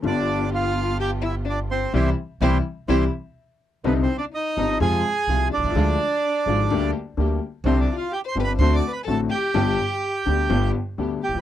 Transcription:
<<
  \new Staff \with { instrumentName = "Bandoneon" } { \time 4/4 \key c \phrygian \tempo 4 = 126 <d' d''>4 <f' f''>4 <g' g''>8 <e' e''>8 <d' d''>8 <c' c''>8 | <e' g' c''>8 r8 <e' g' c''>8 r8 <e' g' c''>8 r4. | \key c \minor \tuplet 3/2 { <b b'>8 <c' c''>8 <d' d''>8 } <ees' ees''>4 <aes' aes''>4. <d' d''>8~ | <d' d''>2~ <d' d''>8 r4. |
\tuplet 3/2 { <c' c''>8 <d' d''>8 <f' f''>8 <g' g''>8 <c'' c'''>8 <b' b''>8 <c'' c'''>8 <d'' d'''>8 <b' b''>8 } <a' a''>8 <g' g''>8~ | <g' g''>2~ <g' g''>8 r4 <g' g''>8 | }
  \new Staff \with { instrumentName = "Violin" } { \time 4/4 \key c \phrygian d'4 f'4 g'8 e'8 d'8 c'8 | e'8 r8 e'8 r8 e'8 r4. | \key c \minor \tuplet 3/2 { b8 c'8 d'8 } ees'4 aes'4. d'8~ | d'2~ d'8 r4. |
\tuplet 3/2 { c'8 d'8 f'8 g'8 c''8 b'8 c''8 d''8 b'8 } a'8 g'8~ | g'2~ g'8 r4 g'8 | }
  \new Staff \with { instrumentName = "String section" } { \time 4/4 \key c \phrygian <b f' g'>1 | <c' e' g'>8 r8 <c' e' g'>8 r8 <c' e' g'>8 r4. | \key c \minor <c' d' ees'>8 r4 <c' d' ees'>8 <aes c' f'>8 r8 <aes c' f'>8 r8 | <aes d' f'>8 r4 <aes d' f'>8 <bes d' g'>8 r8 <bes d' g'>8 r8 |
<c' d' g'>8 r4 <c' d' g'>8 <c' d' fis'>8 r8 <c' d' fis'>8 r8 | <b d' g'>8 r4 <b d' g'>8 <b d' g'>8 r8 <b d' g'>8 r8 | }
  \new Staff \with { instrumentName = "Grand piano" } { \clef bass \time 4/4 \key c \phrygian <g,, g, d g b f'>1 | <c e g>8 r8 <c e g>8 r8 <c e g>8 r4. | \key c \minor <c, c d g c' ees'>8 r4 <g,, g, d g c' ees'>8 <f, c f aes f'>8 r8 <c, c f aes f'>8 r32 b,,32 c,32 des,32 | <d, d f aes f'>8 r4 <aes,, aes, d f aes f'>8 <d, d g bes g'>8 r8 <d, d g bes g'>8 r8 |
<c, c d g c' g'>8 r4 <g,, g, d g c' g'>8 <d, d a c' fis'>8 r8 <a,, a, d a c' fis'>8 r8 | <g,, g, d g b g'>8 r4 <d, d g b g'>8 <g,, g, d g b g'>8 r8 <d, d g b g'>8 r32 a,,32 bes,,32 r32 | }
  \new Staff \with { instrumentName = "Upright bass" } { \clef bass \time 4/4 \key c \phrygian g,,2.~ g,,8. r16 | c,16. r8 r32 c,16. r8 r32 c,16. r4. r32 | \key c \minor c,16. r4 r32 g,,16. r32 f,16. r8 r32 c,16. r16 b,,32 c,32 des,32 | d,16. r4 r32 aes,,16. r32 d,16. r8 r32 d,16. r8 r32 |
c,16. r4 r32 g,,16. r32 d,16. r8 r32 a,,16. r8 r32 | g,,16. r4 r32 d,16. r32 g,,16. r8 r32 d,16. r16 a,,32 bes,,32 r32 | }
>>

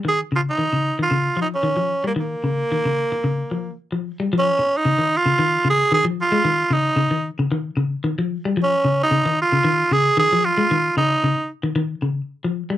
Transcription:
<<
  \new Staff \with { instrumentName = "Tenor saxophone" } { \time 4/4 \key des \lydian \tempo 4 = 113 aes'8 f'16 ees'4 f'8. ees'16 des'4 bes16 | bes2. r4 | des'8. ees'8. f'4 aes'8 aes'8 f'8~ | f'8 ees'4 r2 r8 |
des'8. ees'8. f'4 aes'8 aes'8 f'8~ | f'8 ees'4 r2 r8 | }
  \new Staff \with { instrumentName = "Clean electric guitar" } { \clef bass \time 4/4 \key des \lydian ees8 des8 ees16 des8 ees16 des8 f8 ees16 f8 g16 | ees8 des8 ees16 des8 r16 des8 f8 r16 f8 g16 | f8 r8 des16 ees8 des16 ees8 des8 ees16 f8 aes16 | ees8 des8 des16 ees8 des16 ees8 des8 ees16 f8 g16 |
f8 des8 des16 ees8 des16 ees8 des8 ees16 f8 aes16 | ees8 des8 des16 r8 ees16 ees8 des8 r16 f8 g16 | }
>>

